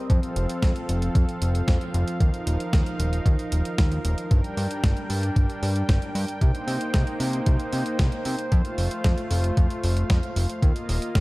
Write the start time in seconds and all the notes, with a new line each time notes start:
Already playing: C4
0.10 F2 F3 A4 F5, kick, closed hi-hat
0.23 closed hi-hat
0.36 F1, closed hi-hat
0.50 closed hi-hat
0.63 F2, kick, snare, closed hi-hat
0.76 closed hi-hat
0.89 F1, closed hi-hat
1.02 closed hi-hat
1.15 F2, kick, closed hi-hat
1.29 closed hi-hat
1.42 F1, closed hi-hat
1.55 closed hi-hat
1.68 F2, kick, snare, closed hi-hat
1.81 closed hi-hat
1.94 F1, closed hi-hat
2.08 closed hi-hat
2.20 D#2 D#4 A#4, kick, closed hi-hat
2.34 closed hi-hat
2.47 D#1, closed hi-hat
2.60 closed hi-hat
2.73 D#2, kick, snare, closed hi-hat
2.86 closed hi-hat
3.00 D#1, closed hi-hat
3.13 closed hi-hat
3.26 D#2, kick, closed hi-hat
3.39 closed hi-hat
3.52 D#1, closed hi-hat
3.65 closed hi-hat
3.78 D#2, kick, snare, closed hi-hat
3.92 closed hi-hat
4.05 D#1, closed hi-hat
4.18 closed hi-hat
4.31 G1 G3 D4 G5, kick, closed hi-hat
4.44 closed hi-hat
4.57 G2, open hi-hat
4.71 closed hi-hat
4.84 G1, kick, snare, closed hi-hat
4.97 closed hi-hat
5.10 G2, open hi-hat
5.23 closed hi-hat
5.36 G1, kick, closed hi-hat
5.50 closed hi-hat
5.62 G2, open hi-hat
5.76 closed hi-hat
5.89 G1, kick, snare, closed hi-hat
6.02 closed hi-hat
6.15 G2, open hi-hat
6.28 closed hi-hat
6.41 C2 A#3 D#4 C5, kick, closed hi-hat
6.55 closed hi-hat
6.67 C3, open hi-hat
6.81 closed hi-hat
6.94 C2, kick, snare, closed hi-hat
7.07 closed hi-hat
7.20 C3, open hi-hat
7.33 closed hi-hat
7.46 C2, kick, closed hi-hat
7.60 closed hi-hat
7.73 C3, open hi-hat
7.86 closed hi-hat
7.99 C2, kick, snare, closed hi-hat
8.12 closed hi-hat
8.25 C3, open hi-hat
8.39 closed hi-hat
8.52 F2 A3 F4 F5, kick, closed hi-hat
8.65 closed hi-hat
8.78 F1, open hi-hat
8.91 closed hi-hat
9.04 F2, kick, snare, closed hi-hat
9.18 closed hi-hat
9.31 F1, open hi-hat
9.44 closed hi-hat
9.57 F2, kick, closed hi-hat
9.70 closed hi-hat
9.84 F1, open hi-hat
9.97 closed hi-hat
10.10 F2, kick, snare, closed hi-hat
10.23 closed hi-hat
10.36 F1, open hi-hat
10.50 closed hi-hat
10.62 D#2 A#3 F4 D#5, kick, closed hi-hat
10.76 closed hi-hat
10.89 D#1, open hi-hat
11.02 closed hi-hat
11.15 D#2, kick, snare, closed hi-hat